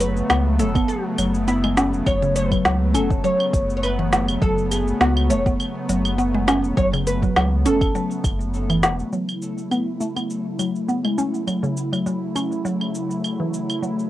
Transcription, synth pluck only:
0.00 0.29 F#3 medium
0.30 0.45 B3 medium
0.59 0.68 A3 medium
0.75 0.88 B3 medium
1.18 1.33 F#3 medium
1.48 1.63 B3 medium
1.64 1.76 G#3 medium
1.77 1.92 C#4 medium
2.07 2.21 F#3 medium
2.22 2.50 C#3 loud
2.52 2.65 F#3 medium
2.66 2.94 F#3 medium
2.95 3.10 C#4 medium
3.24 3.82 F#3 medium
3.99 4.12 E3 medium
4.42 4.99 F#3 medium
5.01 5.16 B3 medium
5.30 5.39 A3 medium
5.46 5.59 B3 medium
5.89 6.04 F#3 medium
6.18 6.33 B3 medium
6.34 6.47 G#3 medium
6.48 6.63 C#4 loud
6.77 6.92 F#3 medium
6.93 7.21 C#3 loud
7.23 7.35 F#3 medium
7.37 7.64 F#3 medium
7.66 7.81 C#4 loud
7.95 8.52 F#3 medium
8.70 8.82 E3 medium
9.13 9.70 F#3 medium
9.71 9.86 B3 medium
10.01 10.10 A3 medium
10.16 10.29 B3 medium
10.59 10.74 F#3 medium
10.89 11.04 B3 medium
11.05 11.18 G#3 medium
11.18 11.33 C#4 medium
11.47 11.62 F#3 medium
11.63 11.91 C#3 medium
11.93 12.05 F#3 medium
12.06 12.34 F#3 medium
12.36 12.51 C#4 medium
12.65 13.23 F#3 medium
13.40 13.53 E3 medium
13.82 14.10 F#3 medium

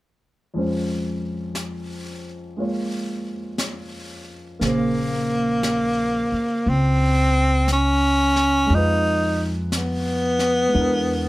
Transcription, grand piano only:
0.54 4.61 F2 soft
0.54 4.61 F3 soft
0.54 2.55 G#3 soft
0.54 4.63 C#4 soft
0.54 4.63 C5 soft
2.57 4.61 G#3 soft
2.57 4.58 A#3 soft
2.57 4.62 F4 soft
2.57 4.62 C#5 soft
4.59 8.70 C#3 soft
4.59 8.68 A#3 soft
4.59 8.70 G#4 soft
4.65 8.71 C5 soft
8.66 10.67 G#3 soft
8.66 10.73 D#4 soft
8.73 10.75 F4 soft
8.73 10.77 B4 medium
10.68 11.29 G#3 soft
10.72 11.29 D4 soft
10.72 11.29 E4 soft
10.80 11.29 A#4 soft

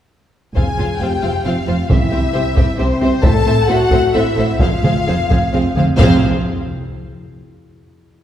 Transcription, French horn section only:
0.55 0.97 G#4 medium
1.00 1.46 G4 medium
1.46 1.91 F4 medium
1.90 2.78 E4 medium
2.80 3.24 C4 medium
3.23 3.68 A4 loud
3.68 4.13 F#4 loud
4.15 4.61 E4 medium
4.61 5.74 F4 medium
6.00 6.18 F4 medium

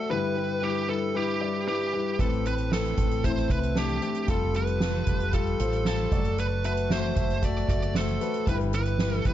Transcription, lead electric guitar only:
0.00 0.11 A4 medium
0.11 0.64 B4 medium
0.63 0.90 G4 medium
0.89 1.16 A4 medium
1.16 1.67 G4 medium
1.68 2.22 G4 medium
2.21 2.44 A4 medium
2.47 2.71 B4 medium
2.73 3.25 A4 medium
3.25 3.49 C5 medium
3.51 3.78 B4 medium
3.78 4.31 G4 medium
4.30 4.56 A4 medium
4.56 5.34 B4 medium
5.34 5.86 A4 medium
5.87 6.39 A4 medium
6.40 6.64 B4 medium
6.66 6.92 B4 medium
6.92 7.45 C5 medium
7.44 7.69 D5 medium
7.70 7.96 D5 medium
7.96 8.44 A4 medium
8.49 8.55 B4 medium
8.75 9.26 B4 medium
9.27 9.34 B4 medium

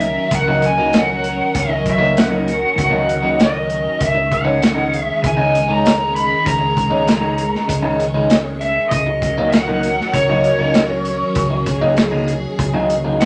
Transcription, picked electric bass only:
0.00 0.17 C#2 loud
0.31 1.40 C#2 medium
1.55 2.63 C#2 loud
2.78 3.86 C#2 medium
4.01 5.09 C#2 medium
5.24 6.32 C#2 medium
6.46 7.54 C#2 loud
7.69 8.77 C#2 medium
8.91 9.99 C#2 loud
10.13 11.22 C#2 medium
11.36 12.45 C#2 medium
12.59 13.25 C#2 medium

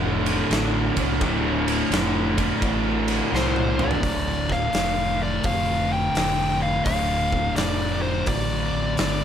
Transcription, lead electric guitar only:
3.35 3.82 C5 medium
3.81 4.52 D5 medium
4.53 5.22 F5 medium
5.23 5.46 D5 medium
5.46 5.92 F5 medium
5.93 6.58 G5 medium
6.63 6.84 F5 medium
6.85 7.52 F5 medium
7.56 8.00 D5 medium
8.02 8.27 C5 medium
8.28 8.94 D5 medium
9.00 9.24 D5 medium

